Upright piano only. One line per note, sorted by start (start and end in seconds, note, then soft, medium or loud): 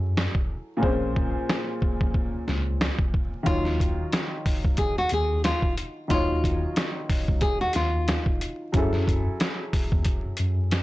0.00 0.78 F#3 medium
0.00 0.79 C#4 medium
0.00 0.79 E4 medium
0.00 0.80 G#4 medium
0.00 0.81 A4 medium
0.77 3.40 A#2 medium
0.77 3.40 A#3 medium
0.77 0.89 C4 medium
0.81 3.42 G#4 medium
0.81 3.43 C5 medium
0.86 3.44 C#4 medium
3.43 6.05 D#3 medium
3.43 6.05 D#4 medium
3.43 6.06 F4 medium
3.47 6.07 F#3 medium
3.47 6.07 C#5 medium
6.08 8.69 D#3 medium
6.08 8.70 D#4 medium
6.08 8.70 F4 medium
6.12 8.71 F#3 medium
6.12 8.72 C#5 medium
8.72 10.83 F#3 medium
8.72 10.83 C#4 medium
8.72 10.83 E4 medium
8.77 10.83 G#4 medium
8.77 10.83 A4 medium